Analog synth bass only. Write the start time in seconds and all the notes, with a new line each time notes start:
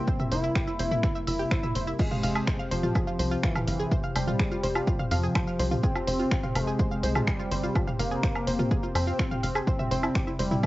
0.31 F1
0.79 F1
1.27 F1
1.75 F1
2.23 F1
2.71 F1
3.19 C2
3.67 G1
4.15 F1
4.63 F1
5.11 F2
5.59 C2
6.07 F1
6.55 F1
7.03 C2
7.51 G1
7.99 F1
8.47 F1
8.95 F2
9.43 F1
9.91 F1
10.39 F1